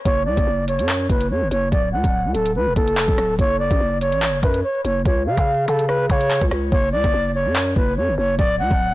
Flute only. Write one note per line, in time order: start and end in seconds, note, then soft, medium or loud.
0.05 0.23 C#5 loud
0.26 0.65 D5 loud
0.68 1.07 C#5 medium
1.10 1.27 B4 medium
1.31 1.48 C#5 medium
1.52 1.69 C#5 medium
1.71 1.89 D5 medium
1.93 2.32 F#5 medium
2.34 2.52 A4 medium
2.56 2.73 B4 medium
2.76 3.35 A4 medium
3.40 3.57 C#5 loud
3.59 3.99 D5 medium
4.01 4.40 C#5 medium
4.42 4.60 B4 medium
4.64 4.81 C#5 medium
4.85 5.02 C#5 medium
5.06 5.23 C#5 medium
5.26 5.66 F5 medium
5.68 5.85 A4 medium
5.88 6.06 B4 medium
6.10 6.45 C#5 medium
6.72 6.90 C#5 loud
6.92 7.32 D5 medium
7.35 7.74 C#5 medium
7.77 7.94 B4 medium
7.97 8.15 C#5 medium
8.18 8.36 C#5 medium
8.38 8.56 D5 medium
8.59 8.94 F#5 medium